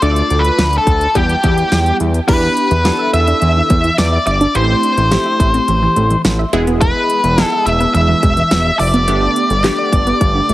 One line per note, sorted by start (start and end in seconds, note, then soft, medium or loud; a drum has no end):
0.02 0.22 D2 loud
0.02 0.92 A3 medium
0.02 0.92 D4 medium
0.02 0.92 F4 medium
0.02 0.92 A4 medium
0.02 0.41 D5 medium
0.02 closed hi-hat medium
0.16 closed hi-hat medium
0.30 0.50 D2 loud
0.30 closed hi-hat medium
0.40 0.75 B4 medium
0.45 closed hi-hat medium
0.59 0.79 D2 loud
0.59 snare loud
0.59 closed hi-hat medium
0.73 closed hi-hat medium
0.78 1.17 A4 medium
0.87 1.07 D2 loud
0.87 kick medium
0.87 closed hi-hat medium
1.01 closed hi-hat medium
1.15 1.35 E2 loud
1.15 1.38 G3 medium
1.15 1.38 B3 medium
1.15 1.38 E4 medium
1.15 1.38 G4 medium
1.15 1.96 G4 medium
1.15 kick medium
1.15 closed hi-hat medium
1.29 closed hi-hat soft
1.44 1.64 E2 loud
1.44 2.11 G3 medium
1.44 2.11 B3 medium
1.44 2.11 E4 medium
1.44 2.11 G4 medium
1.44 kick loud
1.44 closed hi-hat medium
1.58 closed hi-hat medium
1.72 1.92 E2 loud
1.72 snare loud
1.72 closed hi-hat medium
1.86 closed hi-hat soft
2.00 2.20 E2 loud
2.00 closed hi-hat medium
2.14 closed hi-hat medium
2.28 2.48 E2 loud
2.28 2.41 E3 medium
2.28 2.73 B3 medium
2.28 2.73 D4 medium
2.28 2.73 E4 medium
2.28 2.73 G4 medium
2.28 3.09 B4 medium
2.28 kick loud
2.28 closed hi-hat medium
2.28 crash medium
2.57 closed hi-hat medium
2.71 2.91 E2 loud
2.71 2.83 E3 medium
2.71 closed hi-hat medium
2.85 3.75 B3 medium
2.85 3.75 D4 medium
2.85 3.75 E4 medium
2.85 2.97 G4 medium
2.85 3.75 A4 medium
2.85 snare loud
2.85 closed hi-hat medium
2.99 3.11 E5 medium
3.13 3.33 E2 loud
3.13 3.26 E5 loud
3.13 3.98 E5 loud
3.13 closed hi-hat medium
3.27 3.40 D4 medium
3.27 closed hi-hat medium
3.42 3.62 E2 loud
3.42 3.54 E3 medium
3.42 closed hi-hat medium
3.56 3.68 E3 medium
3.70 3.90 E2 loud
3.70 3.82 B3 medium
3.70 kick loud
3.70 closed hi-hat medium
3.84 3.96 E3 medium
3.84 closed hi-hat medium
3.98 4.18 E2 loud
3.98 4.26 D5 medium
3.98 snare loud
3.98 closed hi-hat medium
4.13 4.25 E5 medium
4.27 4.46 G1 medium
4.27 4.56 D5 medium
4.27 4.39 E5 medium
4.27 closed hi-hat medium
4.41 4.53 D4 medium
4.41 closed hi-hat medium
4.55 4.75 A1 loud
4.55 4.67 E3 medium
4.55 5.00 A3 medium
4.55 5.00 C4 medium
4.55 5.00 E4 medium
4.55 5.00 G4 medium
4.55 6.21 C5 medium
4.55 closed hi-hat medium
4.83 closed hi-hat medium
4.97 5.17 A1 loud
4.97 5.10 E3 medium
4.97 closed hi-hat medium
5.11 6.01 A3 medium
5.11 6.01 C4 medium
5.11 6.01 E4 medium
5.11 5.24 G4 medium
5.11 6.01 G4 medium
5.11 snare loud
5.11 closed hi-hat medium
5.26 5.38 E5 medium
5.40 5.60 A1 loud
5.40 5.52 E5 loud
5.40 kick medium
5.40 closed hi-hat medium
5.54 5.66 C4 medium
5.54 closed hi-hat medium
5.68 5.88 A1 loud
5.68 5.80 E3 medium
5.68 closed hi-hat medium
5.82 5.94 E3 medium
5.96 6.16 A1 medium
5.96 6.09 A3 medium
5.96 closed hi-hat medium
6.10 6.23 E3 medium
6.10 closed hi-hat medium
6.25 6.44 A1 loud
6.25 snare loud
6.25 closed hi-hat medium
6.39 6.51 E5 medium
6.53 6.93 E1 loud
6.53 7.21 G#3 medium
6.53 7.21 B3 medium
6.53 7.21 E4 medium
6.53 7.21 G#4 loud
6.53 6.65 E5 medium
6.53 closed hi-hat medium
6.67 6.79 B3 loud
6.67 closed hi-hat medium
6.81 6.94 E3 medium
6.81 7.44 B4 medium
6.81 kick loud
6.81 closed hi-hat medium
7.10 closed hi-hat medium
7.24 7.44 E1 loud
7.24 7.36 E3 medium
7.24 closed hi-hat medium
7.38 8.28 G#3 medium
7.38 8.28 B3 medium
7.38 8.28 E4 medium
7.38 7.50 G#4 medium
7.38 8.28 G#4 medium
7.38 snare loud
7.38 closed hi-hat medium
7.44 7.69 A4 medium
7.52 7.64 E5 medium
7.66 7.86 E1 loud
7.66 7.93 E5 loud
7.66 7.78 E5 loud
7.66 closed hi-hat medium
7.80 7.93 B3 medium
7.80 closed hi-hat medium
7.94 8.14 E1 loud
7.94 8.07 E3 medium
7.94 8.79 E5 loud
7.94 closed hi-hat medium
8.09 8.21 E3 medium
8.23 8.43 E1 loud
8.23 8.35 G#3 medium
8.23 kick loud
8.23 closed hi-hat medium
8.37 8.49 E3 medium
8.37 closed hi-hat medium
8.51 8.71 E1 loud
8.51 snare loud
8.51 closed hi-hat medium
8.65 8.78 E5 medium
8.79 9.09 F1 medium
8.79 10.54 D5 medium
8.79 8.92 E5 medium
8.79 open hi-hat medium
8.94 9.06 B3 medium
8.94 closed hi-hat medium
9.08 9.28 G1 loud
9.08 9.20 D3 medium
9.08 9.53 A3 medium
9.08 9.53 B3 medium
9.08 9.53 D4 medium
9.08 9.53 G4 medium
9.08 closed hi-hat medium
9.36 closed hi-hat medium
9.50 9.70 G1 medium
9.50 9.62 D3 medium
9.50 closed hi-hat medium
9.64 10.54 A3 medium
9.64 10.54 B3 medium
9.64 10.54 D4 medium
9.64 10.54 G4 loud
9.64 9.76 G4 medium
9.64 snare loud
9.64 clap loud
9.64 closed hi-hat medium
9.78 9.91 D5 medium
9.93 10.12 G1 loud
9.93 10.05 D5 loud
9.93 kick medium
9.93 closed hi-hat medium
10.07 10.19 B3 medium
10.07 closed hi-hat medium
10.21 10.41 G1 loud
10.21 10.33 D3 medium
10.21 kick loud
10.21 closed hi-hat medium
10.35 10.47 D3 medium
10.49 10.54 G1 medium
10.49 10.54 A3 medium
10.49 closed hi-hat medium